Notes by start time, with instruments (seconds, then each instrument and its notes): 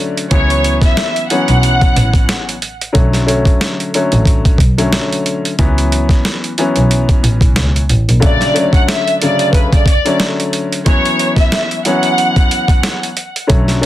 Already playing: upright piano D3 F#3 A3 C#4
0.17 closed hi-hat
0.31 double bass C#2, upright piano E3 F#3 B3 C#4, violin section C#5, kick, closed hi-hat
0.50 closed hi-hat
0.64 closed hi-hat
0.82 violin section E5, kick, snare, closed hi-hat
0.97 snare, closed hi-hat
1.16 closed hi-hat
1.30 upright piano E3 F#3 B3 C#4, violin section F#5, closed hi-hat
1.48 double bass B1, closed hi-hat
1.63 closed hi-hat
1.81 kick, closed hi-hat
1.96 double bass A1, closed hi-hat
2.14 kick, closed hi-hat
2.29 snare, closed hi-hat
2.49 closed hi-hat
2.62 closed hi-hat
2.81 closed hi-hat
2.93 double bass B1, upright piano D3 F#3 A3 C#4, kick, closed hi-hat
3.13 snare, closed hi-hat
3.26 upright piano D3 F#3 A3 C#4, closed hi-hat
3.45 kick, closed hi-hat
3.61 snare, closed hi-hat
3.80 closed hi-hat
3.94 upright piano D3 F#3 A3 C#4, closed hi-hat
4.12 double bass A1, closed hi-hat
4.25 kick, closed hi-hat
4.45 kick, closed hi-hat
4.58 double bass B1, kick, closed hi-hat
4.78 upright piano D3 F#3 A3 C#4, closed hi-hat
4.93 snare, closed hi-hat
5.13 closed hi-hat
5.26 closed hi-hat
5.45 closed hi-hat
5.59 double bass C#2, upright piano E3 F#3 B3 C#4, kick, closed hi-hat
5.78 closed hi-hat
5.92 closed hi-hat
6.09 kick, snare, closed hi-hat
6.25 snare, closed hi-hat
6.44 closed hi-hat
6.58 upright piano E3 F#3 B3 C#4, closed hi-hat
6.76 double bass B1, closed hi-hat
6.91 closed hi-hat
7.09 kick, closed hi-hat
7.24 double bass A1, closed hi-hat
7.41 double bass B1, kick, closed hi-hat
7.56 double bass C#2, snare, closed hi-hat
7.76 closed hi-hat
7.89 double bass A1, closed hi-hat
8.09 double bass A#1, closed hi-hat
8.20 upright piano C#3 D3 F#3 A3, violin section D5, kick, closed hi-hat
8.41 snare, closed hi-hat
8.54 upright piano D3 F#3 A3 C#4, closed hi-hat
8.73 violin section F#5, kick, closed hi-hat
8.88 violin section E5, snare, closed hi-hat
9.08 closed hi-hat
9.21 upright piano C#3 D3 F#3 A3, violin section D5, closed hi-hat
9.39 closed hi-hat
9.53 violin section B4, kick, closed hi-hat
9.73 violin section D5, kick, closed hi-hat
9.86 violin section D5, kick, closed hi-hat
10.05 upright piano D3 F#3 A3 C#4, closed hi-hat
10.20 snare, closed hi-hat
10.40 closed hi-hat
10.53 closed hi-hat
10.72 closed hi-hat
10.86 upright piano E3 F#3 B3 C#4, violin section C#5, kick, closed hi-hat
11.05 closed hi-hat
11.19 closed hi-hat
11.36 violin section E5, kick, snare, closed hi-hat
11.52 snare, closed hi-hat
11.71 closed hi-hat
11.85 upright piano E3 F#3 B3 C#4, violin section F#5, closed hi-hat
12.03 closed hi-hat
12.18 closed hi-hat
12.36 kick, closed hi-hat
12.51 closed hi-hat
12.68 kick, closed hi-hat
12.83 snare, closed hi-hat
13.03 closed hi-hat
13.17 closed hi-hat
13.36 closed hi-hat
13.47 double bass B1, upright piano D3 F#3 A3 C#4, kick, closed hi-hat
13.68 snare, closed hi-hat
13.81 upright piano D3 F#3 A3 C#4